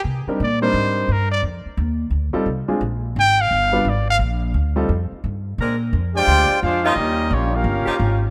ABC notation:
X:1
M:4/4
L:1/8
Q:"Swing" 1/4=173
K:Fdor
V:1 name="Trumpet"
z2 d c3 B d | z8 | z2 g f3 d f | z8 |
[K:Eblyd] z8 | z8 |]
V:2 name="Trumpet section"
z8 | z8 | z8 | z8 |
[K:Eblyd] z3 [Fcdg]3 [D_Acf] [_DGBe]- | [_DGBe]2 [B,FG_d] [DGBf]4 z |]
V:3 name="Grand piano"
z [G,CDEB] z [G,CDEB]3 z2 | z4 z [G,CEF=A] z [_A,CDF_A] | z4 z [G,=B,DF=B] z2 | z3 [G,CEF=A] z4 |
[K:Eblyd] z8 | z8 |]
V:4 name="Saxophone section"
z8 | z8 | z8 | z8 |
[K:Eblyd] [_A,CDB] z6 [F,_DEF] | z4 z [F,_DEG] z2 |]
V:5 name="Trombone section"
z8 | z8 | z8 | z8 |
[K:Eblyd] z3 [_A,DG]3 [A,DF] [G,B,E]- | [G,B,E]2 [G,B,_D] [B,DF]4 z |]
V:6 name="Upright bass" clef=bass
C, z B,,2 A,,2 G,,2 | F,, z E,,2 D,, z C,, z | B,,,2 A,,,2 G,,,2 A,,,2 | B,,,2 D,,2 F,, z G,,2 |
[K:Eblyd] B,,2 F,,2 D,, z F,,2 | E,,2 B,,,2 G,,, z _A,,,2 |]